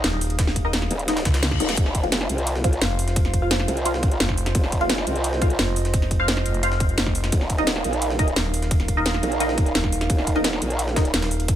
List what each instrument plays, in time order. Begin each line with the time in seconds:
Already playing: analog synth pad D#4 G#4 F5
0.04 fm bass D#1, snare, closed hi-hat, ride
0.21 open hi-hat, ride
0.30 closed hi-hat, ride
0.39 kick, snare, closed hi-hat, ride
0.47 snare
0.56 kick, closed hi-hat, ride
0.65 synth stab D#4 A#4 D#5
0.73 snare, closed hi-hat, ride
0.82 snare, ride
0.91 wobble bass D#1, closed hi-hat, ride
0.99 closed hi-hat
1.08 synth stab D#4 A#4 D#5, snare, closed hi-hat, ride, reverse cymbal
1.17 snare, ride
1.25 fm bass C#2, kick, snare, closed hi-hat, ride
1.34 snare, closed hi-hat, ride
1.43 snare, closed hi-hat, ride
1.51 kick, snare, ride
1.60 wobble bass D#1, synth stab D#4 A#4 D#5, open hi-hat, ride
1.69 snare, closed hi-hat, ride
1.77 wobble bass F1, analog synth pad F4 C5 F5, kick, closed hi-hat, ride
1.86 snare
1.95 kick, closed hi-hat, ride
2.03 synth stab F4 C5 F5, ride
2.12 snare, closed hi-hat, ride
2.21 snare
2.29 wobble bass C2, closed hi-hat, ride
2.38 closed hi-hat
2.47 closed hi-hat, ride
2.56 snare
2.64 synth stab F4 C5 F5, kick, closed hi-hat, ride
2.73 closed hi-hat
2.81 fm bass F1, snare, closed hi-hat, ride
2.99 open hi-hat, ride
3.08 snare, closed hi-hat
3.16 kick, closed hi-hat, ride
3.25 snare, ride
3.34 kick, closed hi-hat, ride
3.42 synth stab F4 C5 F5
3.51 snare, closed hi-hat, ride
3.60 snare, ride
3.68 wobble bass C2, closed hi-hat, ride
3.77 closed hi-hat
3.85 synth stab F4 C5 F5, closed hi-hat, ride
3.94 snare
4.03 kick, closed hi-hat, ride
4.12 closed hi-hat
4.20 fm bass F1, snare, closed hi-hat, ride
4.29 kick, snare
4.38 open hi-hat, ride
4.46 snare, closed hi-hat
4.55 wobble bass F1, analog synth pad D#5, kick, closed hi-hat, ride
4.64 snare
4.72 kick, closed hi-hat, ride
4.81 synth stab F4 C5 F5, ride
4.90 snare, closed hi-hat, ride
4.98 snare
5.07 wobble bass C2, closed hi-hat, ride
5.16 closed hi-hat
5.24 closed hi-hat, ride
5.33 snare
5.42 synth stab F4 C5 F5, kick, closed hi-hat, ride
5.50 closed hi-hat
5.59 fm bass F1, snare, closed hi-hat, ride
5.76 open hi-hat, ride
5.85 snare, closed hi-hat
5.94 kick, closed hi-hat, ride
6.02 snare, ride
6.11 kick, closed hi-hat, ride
6.20 synth stab F4 C5 F5
6.28 snare, closed hi-hat, ride
6.37 snare, ride
6.46 fm bass F1, closed hi-hat, ride
6.54 closed hi-hat
6.63 synth stab F4 C5 F5, closed hi-hat, ride
6.72 snare
6.80 kick, closed hi-hat, ride
6.89 closed hi-hat
6.98 fm bass F1, snare, closed hi-hat, ride
7.06 kick, snare
7.15 open hi-hat, ride
7.24 snare, closed hi-hat
7.32 wobble bass D#1, analog synth pad D#4 A#4 F5, kick, closed hi-hat, ride
7.41 snare
7.50 kick, closed hi-hat, ride
7.58 synth stab D#4 A#4 D#5, ride
7.67 snare, closed hi-hat, ride
7.76 snare
7.84 wobble bass A#1, closed hi-hat, ride
7.93 closed hi-hat
8.02 closed hi-hat, ride
8.10 snare
8.19 synth stab D#4 A#4 D#5, kick, closed hi-hat, ride
8.28 closed hi-hat
8.36 fm bass D#1, snare, closed hi-hat, ride
8.54 open hi-hat, ride
8.62 snare, closed hi-hat
8.71 kick, closed hi-hat, ride
8.80 snare, ride
8.88 kick, closed hi-hat, ride
8.97 synth stab D#4 A#4 D#5
9.06 snare, closed hi-hat, ride
9.14 snare, ride
9.23 wobble bass A#1, closed hi-hat, ride
9.32 closed hi-hat
9.40 synth stab D#4 A#4 D#5, closed hi-hat, ride
9.49 snare
9.58 kick, closed hi-hat, ride
9.66 closed hi-hat
9.75 fm bass D#1, snare, closed hi-hat, ride
9.84 kick, snare
9.92 open hi-hat, ride
10.01 snare, closed hi-hat
10.10 wobble bass D#1, kick, closed hi-hat, ride
10.18 snare
10.27 kick, closed hi-hat, ride
10.36 synth stab D#4 A#4 D#5, ride
10.44 snare, closed hi-hat, ride
10.53 snare
10.62 wobble bass A#1, closed hi-hat, ride
10.70 closed hi-hat
10.79 closed hi-hat, ride
10.88 snare
10.96 synth stab D#4 A#4 D#5, kick, snare, closed hi-hat, ride
11.05 closed hi-hat, ride
11.14 fm bass D#1, snare, closed hi-hat, ride
11.22 snare, ride
11.31 open hi-hat, ride
11.40 closed hi-hat, ride
11.48 kick, closed hi-hat, ride